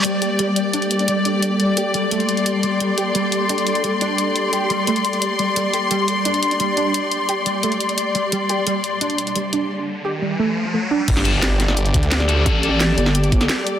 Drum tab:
CC |----------------|----------------|----------------|----------------|
HH |x-x-x-x-xxxxx-x-|x-x-x-x-xxxxx-x-|x-x-x-x-xxxxx-x-|x-x-x-x-xxxxx-x-|
SD |----------------|----------------|----------------|----------------|
BD |----------------|----------------|----------------|----------------|

CC |----------------|----------------|----------------|----------------|
HH |x-x-x-x-xxxxx-x-|x-x-x-x-xxxxx-x-|x-x-x-x-xxxxx-x-|----------------|
SD |----------------|----------------|----------------|----------------|
BD |----------------|----------------|----------------|----------------|

CC |x---------------|----------------|
HH |x-x-x-x-xxxxx-x-|x-x-x-x-xxxxx-x-|
SD |-o--o-oo----oo--|----o--o---oo---|
BD |o---------o-----|o---------o-----|